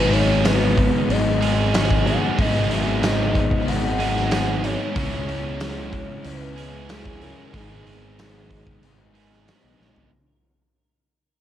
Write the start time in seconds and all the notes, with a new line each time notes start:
Already playing: G#1 G#2 D#3 F#3 G#3 B3 D#4 G#4 B4
0.12 F#3 G#3 B3 D#4 C#5, open hi-hat
0.44 D#3 F#3 G#3 B3 D#4 B4, snare, open hi-hat, tambourine
0.76 B3, kick, open hi-hat
1.09 G#1 G#2 D#3 F#3 G#3 B3 D#4 D#5, open hi-hat
1.41 G#2 D#3 G#3 B3 D#4 G#4, open hi-hat
1.73 G#2 D#3 G#3 B3 D#4 G#4, snare, open hi-hat, tambourine
1.90 kick
2.06 G#2 D#3 G#3 F#5, open hi-hat
2.38 G#1 G#2 D#3 F#3 G#3 B3 D#4 G#4 D#5, kick, open hi-hat
2.69 F#3 G#3 B3 D#4 E5, open hi-hat
3.01 D#3 F#3 G#3 B3 D#4 D#5, snare, open hi-hat, tambourine
3.34 B3, kick, open hi-hat
3.51 kick
3.65 G#1 G#2 D#3 F#3 G#3 B3 D#4 F#5, open hi-hat
3.98 G#2 D#3 G#3 B3 D#4 G#4, open hi-hat
4.16 snare
4.30 G#2 D#3 G#3 B3 D#4, snare, open hi-hat, tambourine
4.34 G#4
4.64 G#2 D#3 G#3 D#4 C#5, open hi-hat
4.95 C#2 C#3 G#3 B3 C#4 E4 G#4, kick, open hi-hat
5.27 G#3 B3 C#4 E4, open hi-hat
5.60 C#3 G#3 B3 C#4 E4, snare, open hi-hat, tambourine
5.92 E4, kick, open hi-hat
6.24 C#2 C#3 G#3 B3 C#4 E4 B4, open hi-hat
6.56 C#3 G#3 C#4 E4 G#4, open hi-hat
6.89 C#3 G#3 C#4 E4 G#4, snare, open hi-hat, tambourine
7.06 kick
7.21 C#3 G#3 C#4 G#4 A#4, open hi-hat
7.53 G#1 G#2 D#3 G#3 B3 D#4 G#4, kick, open hi-hat
7.86 G#3 B3 D#4, open hi-hat
8.19 D#3 G#3 B3 D#4, snare, open hi-hat, tambourine
8.51 D#4, kick, open hi-hat
8.67 kick
8.82 G#1 G#2 D#3 G#3 B3, open hi-hat
8.86 D#4
9.14 G#2 D#3 G#3 B3 D#4 G#4 A#4, open hi-hat
9.33 snare
9.46 G#2 D#3 G#3 B3 D#4 G#4, snare, open hi-hat, tambourine
9.63 B1
9.78 A#1 G#2 D#3 G#3 A#4, snare
9.96 G#1, floor tom